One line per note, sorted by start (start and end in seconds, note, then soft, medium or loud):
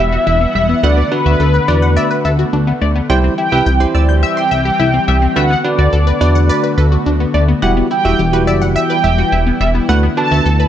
0.00 0.18 E1 loud
0.00 0.81 E3 medium
0.00 0.81 G3 medium
0.00 3.06 B3 medium
0.00 0.87 E5 loud
0.00 3.06 F#5 medium
0.12 0.22 F#4 medium
0.27 0.47 E1 loud
0.27 0.36 E4 medium
0.27 0.36 E5 medium
0.41 0.50 B3 medium
0.55 0.75 E1 loud
0.55 0.64 G3 medium
0.55 0.65 E5 medium
0.69 0.78 B3 medium
0.83 1.03 D2 loud
0.83 3.07 D3 medium
0.83 3.07 A3 medium
0.83 0.92 A3 medium
0.83 0.99 D4 medium
0.83 0.99 F#4 medium
0.83 0.99 B4 medium
0.83 1.12 D5 loud
0.83 0.93 F#5 loud
0.97 1.07 B3 medium
1.12 1.21 D4 medium
1.12 1.43 D4 medium
1.12 1.43 F#4 medium
1.12 1.43 B4 medium
1.12 2.78 B4 loud
1.26 1.36 D2 loud
1.26 1.35 F#4 medium
1.26 1.35 E5 medium
1.40 1.60 D2 loud
1.40 1.49 A4 medium
1.54 1.63 B4 medium
1.68 1.98 E2 medium
1.68 2.30 D4 medium
1.68 2.30 F#4 medium
1.68 2.30 B4 medium
1.68 1.87 D5 medium
1.68 1.77 D5 medium
1.82 1.92 F#5 medium
1.96 2.06 D5 loud
1.96 2.15 E5 medium
2.11 2.20 B4 medium
2.25 2.45 D2 loud
2.25 2.34 A4 medium
2.25 2.34 E5 medium
2.39 2.48 F#4 medium
2.53 2.73 D2 medium
2.53 2.62 D4 medium
2.67 2.76 B3 medium
2.81 3.01 D2 loud
2.81 2.91 A3 medium
2.81 2.91 D5 medium
2.96 3.05 B3 medium
3.10 3.30 C2 loud
3.10 5.34 E3 medium
3.10 5.34 G3 medium
3.10 3.19 G3 loud
3.10 5.34 C4 medium
3.10 3.33 E4 medium
3.10 5.34 G4 medium
3.10 3.33 G4 medium
3.10 3.33 C5 loud
3.10 3.19 G5 loud
3.24 3.33 C4 medium
3.38 3.47 E4 medium
3.38 3.90 G5 loud
3.52 3.62 C2 loud
3.52 3.68 E4 medium
3.52 3.61 G4 medium
3.52 3.68 G4 medium
3.52 3.68 B4 medium
3.52 3.61 E5 medium
3.66 3.86 C2 loud
3.66 3.75 G5 medium
3.80 4.42 E4 medium
3.80 4.42 G4 medium
3.80 4.42 C5 medium
3.80 3.90 C6 medium
3.94 4.24 D2 loud
3.94 4.13 D5 medium
3.94 4.04 E6 medium
4.09 4.18 G6 medium
4.23 4.41 E5 medium
4.23 5.40 G5 loud
4.23 4.32 E6 loud
4.37 4.46 C6 medium
4.51 4.71 C2 loud
4.51 4.61 E5 medium
4.51 4.60 G5 medium
4.65 4.75 G4 medium
4.79 4.99 C2 loud
4.79 4.89 E4 medium
4.79 4.89 E5 medium
4.94 5.03 C4 medium
5.08 5.28 C2 medium
5.08 5.17 G3 medium
5.08 5.17 E5 medium
5.22 5.31 C4 medium
5.36 5.56 D2 loud
5.36 7.60 D3 medium
5.36 5.45 A3 medium
5.36 7.60 A3 medium
5.36 10.68 B3 medium
5.36 5.52 D4 medium
5.36 5.52 F#4 medium
5.36 7.60 F#4 medium
5.36 5.52 B4 medium
5.36 5.46 E5 loud
5.36 5.65 F#5 loud
5.50 5.60 B3 medium
5.64 5.95 D4 medium
5.64 5.74 D4 medium
5.64 5.95 F#4 medium
5.64 5.95 B4 medium
5.64 7.30 D5 loud
5.79 5.88 D2 loud
5.79 5.88 F#4 medium
5.79 5.88 D5 medium
5.93 6.13 D2 loud
5.93 6.02 A4 medium
6.07 6.16 B4 medium
6.21 6.51 E2 medium
6.21 6.83 D4 medium
6.21 6.83 F#4 medium
6.21 6.83 B4 medium
6.21 6.40 D5 medium
6.21 6.30 D5 medium
6.35 6.44 F#5 medium
6.49 6.68 B4 medium
6.49 6.59 D5 loud
6.64 6.73 B4 medium
6.77 6.97 D2 loud
6.77 6.87 A4 medium
6.77 6.87 B4 medium
6.92 7.01 F#4 medium
7.06 7.26 D2 loud
7.06 7.15 D4 medium
7.20 7.29 B3 medium
7.34 7.54 D2 loud
7.34 7.43 A3 medium
7.34 7.43 D5 medium
7.48 7.58 B3 medium
7.62 7.82 E1 loud
7.62 9.87 E3 medium
7.62 9.87 G3 medium
7.62 7.72 G3 medium
7.62 7.86 E4 medium
7.62 10.68 E4 medium
7.62 7.86 F#4 medium
7.62 7.86 G4 loud
7.62 7.72 F#5 loud
7.77 7.86 B3 medium
7.91 8.00 E4 medium
7.91 8.44 G5 loud
8.05 8.15 E1 loud
8.05 8.20 E4 medium
8.05 8.20 F#4 medium
8.05 8.14 F#4 medium
8.05 8.20 G4 medium
8.05 8.14 E5 medium
8.19 8.49 E1 loud
8.19 8.28 G4 medium
8.33 8.95 E4 medium
8.33 8.95 F#4 medium
8.33 8.95 G4 medium
8.33 8.42 B4 medium
8.47 8.77 F#1 loud
8.47 8.66 D5 medium
8.47 8.57 E5 loud
8.62 8.71 F#5 medium
8.76 8.94 E5 medium
8.76 8.85 E5 loud
8.76 9.85 G5 loud
8.90 8.99 B4 medium
9.04 9.24 E1 loud
9.04 9.13 G4 medium
9.04 9.13 E5 medium
9.18 9.27 F#4 medium
9.32 9.52 E1 loud
9.32 9.42 E4 medium
9.32 9.42 E5 medium
9.47 9.56 B3 medium
9.60 9.80 E1 loud
9.60 9.70 G3 medium
9.60 9.70 E5 medium
9.75 9.84 B3 medium
9.89 10.09 D2 loud
9.89 10.68 D3 medium
9.89 9.98 A3 loud
9.89 10.68 A3 medium
9.89 10.04 D4 medium
9.89 10.04 F#4 medium
9.89 10.04 B4 loud
9.89 9.98 F#5 loud
10.03 10.12 B3 medium
10.17 10.48 D4 medium
10.17 10.26 D4 medium
10.17 10.48 F#4 medium
10.17 10.48 B4 medium
10.17 10.68 A5 loud
10.31 10.41 D2 loud
10.31 10.41 F#4 medium
10.31 10.41 E5 medium
10.46 10.65 D2 loud
10.46 10.55 A4 loud
10.60 10.68 B4 medium